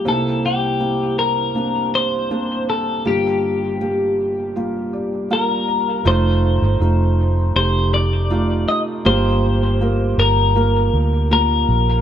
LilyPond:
<<
  \new Staff \with { instrumentName = "Clean electric guitar" } { \time 4/4 \key g \minor \tempo 4 = 80 a'8 g'4 bes'4 c''4 a'8 | g'2. bes'4 | c''2 c''8 d''4 ees''8 | c''4. bes'4. bes'4 | }
  \new Staff \with { instrumentName = "Felt piano" } { \time 4/4 \key g \minor << { r1 | r2 r8 d''8 f''8 bes''8 | r1 | r1 | } \\ { <bes c' ees' e'>4 <bes c' e'>4 <bes c' d'>4 <bes c' d'>4 | <g bes f'>4 <g bes g'>4 <g bes f'>4 <g bes f'>4 | <a ees' f'>4 <a ees' f'>4 <a ees' g'>4 <a ees' f'>4 | <bes f' g'>4 <bes f' bes'>4 <bes f' bes'>4 <bes f' bes'>4 | } >> }
  \new Staff \with { instrumentName = "Felt piano" } { \clef bass \time 4/4 \key g \minor <c, c>1 | <g,, g,>1 | r1 | g,4. r2 r8 | }
  \new Staff \with { instrumentName = "Fingered electric bass" } { \clef bass \time 4/4 \key g \minor r1 | r1 | f,,8. g,,16 f,,4 f,,4. r8 | g,,4. g,,4 d,4 bes,,8 | }
>>